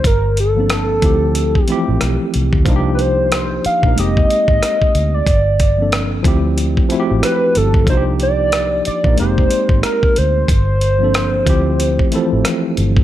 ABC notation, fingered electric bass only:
X:1
M:4/4
L:1/16
Q:"Swing 16ths" 1/4=92
K:Dphr
V:1 name="Fingered electric bass" clef=bass
G,,,6 D,,4 z A,,, =B,,, z C,, D,, | C,,6 z B,,, F,,,2 z _A,,, z2 D,,2 | G,,,6 D,,4 z A,,, z2 G,,,2 | C,,6 z B,,, F,,,2 z _A,,, z2 D,,2 |
G,,,6 D,,4 z A,,, z2 G,,,2 |]